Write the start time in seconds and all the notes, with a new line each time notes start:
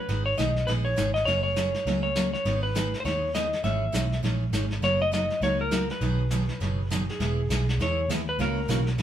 Already playing: B4
0.09 G#1 D#3 G#3 B3 D#4 G#4, brush sweep, snare
0.26 C#5
0.37 B1 D#3 G#3 B3 D#4 G#4 D#5, snare, hi-hat pedal
0.56 snare
0.67 A#1 D#3 G#3 B3 D#4 G#4 B4, brush sweep, snare
0.85 C#5
0.96 G#1 D#3 G#3 B3 D#4 G#4, snare, hi-hat pedal
1.14 D#5, snare
1.25 F#1 F#3 A#3 C#4 G#4 C#5, brush sweep, snare
1.43 C#5
1.56 F#3 A#3 C#4 G#4, snare, hi-hat pedal
1.74 snare
1.86 C#2 F#3 A#3 C#4 G#4, brush sweep, snare
2.03 C#5
2.15 F#3 A#3 C#4 G#4, snare, hi-hat pedal
2.34 C#5, snare
2.45 G#1 D#3 G#3 B3 D#4 G#4, brush sweep, snare
2.63 B4
2.75 D#3 G#3 B3 D#4 G#4, snare, hi-hat pedal
2.94 snare
3.00 C5
3.05 D#2 D#3 G#3 B3 D#4 G#4 C#5, brush sweep, snare
3.34 D#3 G#3 B3 D#4 G#4 D#5, snare, hi-hat pedal
3.53 snare
3.64 G#1 E3 G#3 C#4 D#4 G#4 E5, brush sweep, snare
3.92 B1 E3 G#3 C#4 D#4 G#4, snare, hi-hat pedal
4.12 snare
4.23 A#1 E3 G#3 C#4 D#4 G#4, brush sweep, snare
4.51 G#1 E3 G#3 C#4 D#4 G#4, snare, hi-hat pedal
4.71 snare
4.81 F#1 F#3 A#3 D#4 F#4 C#5, brush sweep, snare
5.02 D#5
5.12 F#3 A#3 D#4 F#4 D#5, snare, hi-hat pedal
5.30 snare
5.41 C#2 F#3 A#3 D#4 F#4 C#5, brush sweep, snare
5.61 A#4
5.71 F#3 A#3 D#4 F#4, snare, hi-hat pedal
5.90 B4, snare
6.01 B1 B2 D#3 F#3 B3 D#4 G#4, brush sweep, snare
6.30 B2 D#3 F#3 B3 D#4 G#4, snare, hi-hat pedal
6.49 snare
6.60 F#1 B2 D#3 F#3 B3 D#4 G#4, brush sweep, snare
6.90 B2 D#3 F#3 B3 D#4 G#4, snare, hi-hat pedal
7.09 G#4, snare
7.20 E1 E3 G#3 B3 E4 G#4, brush sweep, snare
7.49 B1 E3 G#3 B3 E4 G#4, snare, hi-hat pedal
7.69 snare
7.78 E2 E3 G#3 B3 E4 G#4 C#5, brush sweep, snare
8.09 D#2 E3 G#3 B3 E4 G#4, snare, hi-hat pedal
8.29 B4
8.39 C#2 C#3 E3 A#3 C#4 F#4 A#4, brush sweep, snare
8.68 B1 C#3 E3 A#3 C#4 F#4, snare, hi-hat pedal
8.87 snare
8.98 A#1 C#3 E3 A#3, brush sweep, snare